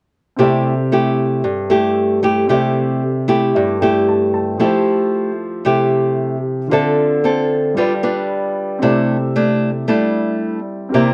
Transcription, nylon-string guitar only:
0.39 C3 A3 E4 G4
0.92 A3 E4 G4
1.44 G2
1.70 A3 E4 G4
2.23 A3 E4 G4
2.49 C3 A3 E4 G4
3.28 A3 E4 G4
3.56 G2
3.82 A3 E4 G4
4.60 F3 A3 E4 G4
5.65 C3 A3 E4 G4
6.71 D3 C4 F4 A4
7.24 C4 F4 A4
7.77 G3 D4 F4 B4
8.03 D4 F4 B4
8.82 C3 A3 D4 E4
9.36 A3 D4 E4
9.88 G3 A3 D4 E4
10.94 C3 A#3 E4 G4

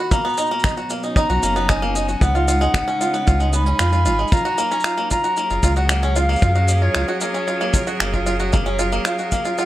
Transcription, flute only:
Already playing: B5
0.12 A#5
1.16 A#5
1.69 G#5
2.23 F#5
3.54 B5
4.33 A#5
5.11 A#5
5.77 F#5
6.16 F5
6.82 C#5
7.21 C#5
9.06 F5
9.59 F#5

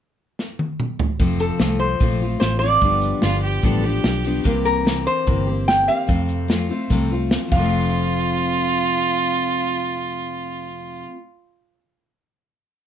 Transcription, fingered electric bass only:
1.19 F1
1.60 C2
2.01 A#1
2.41 A1
2.82 G1
3.23 G1
3.63 A1
4.04 B1
4.45 C2
5.27 G1
6.09 F2
6.90 C2
7.52 F1

